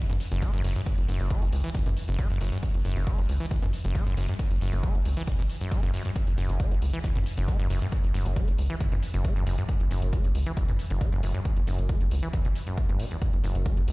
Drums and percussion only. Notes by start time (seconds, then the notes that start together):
0.10 closed hi-hat
0.20 open hi-hat
0.32 closed hi-hat
0.42 kick, closed hi-hat
0.54 closed hi-hat
0.64 open hi-hat
0.76 closed hi-hat
0.86 kick, closed hi-hat
0.98 closed hi-hat
1.08 open hi-hat
1.20 closed hi-hat
1.30 kick, closed hi-hat
1.42 closed hi-hat
1.53 open hi-hat
1.64 closed hi-hat
1.75 kick, closed hi-hat
1.86 closed hi-hat
1.97 open hi-hat
2.08 closed hi-hat
2.19 kick, closed hi-hat
2.30 closed hi-hat
2.41 open hi-hat
2.52 closed hi-hat
2.63 kick, closed hi-hat
2.74 closed hi-hat
2.85 open hi-hat
2.96 closed hi-hat
3.07 kick, closed hi-hat
3.18 closed hi-hat
3.29 open hi-hat
3.40 closed hi-hat
3.51 kick, closed hi-hat
3.62 closed hi-hat
3.73 open hi-hat
3.85 closed hi-hat
3.95 kick, closed hi-hat
4.07 closed hi-hat
4.17 open hi-hat
4.29 closed hi-hat
4.39 kick, closed hi-hat
4.51 closed hi-hat
4.61 open hi-hat
4.73 closed hi-hat
4.83 kick, closed hi-hat
4.95 closed hi-hat
5.05 open hi-hat
5.17 closed hi-hat
5.28 kick, closed hi-hat
5.39 closed hi-hat
5.50 open hi-hat
5.61 closed hi-hat
5.72 kick, closed hi-hat
5.83 closed hi-hat
5.94 open hi-hat
6.05 closed hi-hat
6.16 kick, closed hi-hat
6.27 closed hi-hat
6.38 open hi-hat
6.49 closed hi-hat
6.60 kick, closed hi-hat
6.71 closed hi-hat
6.82 open hi-hat
6.93 closed hi-hat
7.04 kick, closed hi-hat
7.15 closed hi-hat
7.26 open hi-hat
7.37 closed hi-hat
7.48 kick, closed hi-hat
7.60 closed hi-hat
7.70 open hi-hat
7.82 closed hi-hat
7.92 kick, closed hi-hat
8.04 closed hi-hat
8.14 open hi-hat
8.26 closed hi-hat
8.36 kick, closed hi-hat
8.48 closed hi-hat
8.58 open hi-hat
8.70 closed hi-hat
8.80 kick, closed hi-hat
8.92 closed hi-hat
9.03 open hi-hat
9.14 closed hi-hat
9.25 kick, closed hi-hat
9.36 closed hi-hat
9.47 open hi-hat
9.58 closed hi-hat
9.69 kick, closed hi-hat
9.80 closed hi-hat
9.91 open hi-hat
10.02 closed hi-hat
10.13 kick, closed hi-hat
10.24 closed hi-hat
10.35 open hi-hat
10.46 closed hi-hat
10.57 kick, closed hi-hat
10.68 closed hi-hat
10.79 open hi-hat
10.90 closed hi-hat
11.01 kick, closed hi-hat
11.12 closed hi-hat
11.23 open hi-hat
11.35 closed hi-hat
11.45 kick, closed hi-hat
11.57 closed hi-hat
11.67 open hi-hat
11.79 closed hi-hat
11.89 kick, closed hi-hat
12.01 closed hi-hat
12.11 open hi-hat
12.23 closed hi-hat
12.33 kick, closed hi-hat
12.45 closed hi-hat
12.55 open hi-hat
12.67 closed hi-hat
12.78 kick, closed hi-hat
12.89 closed hi-hat
13.00 open hi-hat
13.11 closed hi-hat
13.22 kick, closed hi-hat
13.33 closed hi-hat
13.44 open hi-hat
13.55 closed hi-hat
13.66 kick, closed hi-hat
13.77 closed hi-hat
13.88 open hi-hat